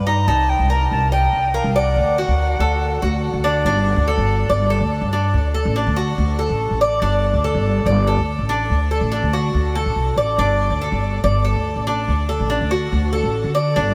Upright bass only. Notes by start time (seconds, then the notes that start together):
Already playing: G2
0.27 C2
0.59 C2
0.91 C2
1.33 C2
1.64 C2
1.96 D2
2.28 D2
2.59 D2
3.02 D2
3.33 D2
3.65 G1
3.96 D2
4.17 G1
4.49 G1
4.81 D2
5.01 G2
5.34 D2
5.65 A1
5.87 D2
6.18 D2
6.49 A1
6.70 A1
7.02 G1
7.33 D2
7.54 G1
7.86 G1
8.17 D2
8.39 A1
8.70 D2
9.01 A1
9.22 D2
9.54 D2
9.86 A1
9.96 C2
10.16 A1
10.38 G1
10.70 D2
10.92 G1
11.24 G1
11.55 D2
11.76 A1
12.08 D2
12.40 A1
12.61 D2
12.92 D2
13.23 A1
13.44 D3
13.76 G1